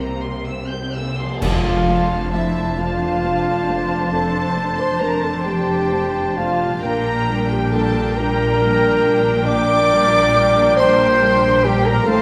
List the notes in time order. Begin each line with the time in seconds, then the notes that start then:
Already playing: C2 C3 G3 A#3 C4 D4 A#4
0.00 A#3 C5 A#5
0.23 A#4 C6
0.48 C4 C5 E6
0.70 C4 A#4 G6
0.95 A#3 A4 E6
1.19 G3 A#4 C6
1.25 F3
1.29 A3
1.34 D4
1.38 F1 F2 D4 C5 F5 A5, concert bass drum, crash
1.43 F2 D4 F4 C5
1.88 A3 D4 C5
2.33 A3 D4 E4 C5 E5
2.78 A3 D4 F4 C5 F5
3.23 A3 D4 C5
3.68 A3 D4 C5
4.11 F2 A4 A5
4.55 A3 D4 C5
4.77 C5 C6
4.99 A3 D4 A#4 C5 A#5
5.21 A5
5.25 A4
5.43 A3 D4 G4 C5 G5
5.91 A3 D4 C5
6.36 A3 D4 F4 C5 F5
6.65 A#2
6.69 G3
6.74 D4
6.79 D4 A#4
6.83 A#1 A#2 D4 A#4 G5 A#5
7.30 G3 D4 A#4
7.50 G4 G5
7.71 G3 D4 A4 A#4 A5
8.15 G3 D4 A#4 A#5
8.61 G3 D4 A#4
9.05 G3 D4 A#4
9.46 A#2 D5 D6
9.92 G3 D4 A#4
10.36 G3 D4 A#4
10.76 G3 D4 A#4 C5 C6
11.21 G3 D4 A#4
11.64 G3 D4 G4 A#4 G5
11.84 A#4 A#5
11.89 A2
11.94 F3
11.99 D4
12.03 C4 A4 C5 F5 A5
12.07 A1 A2 D4 C5 F5 A5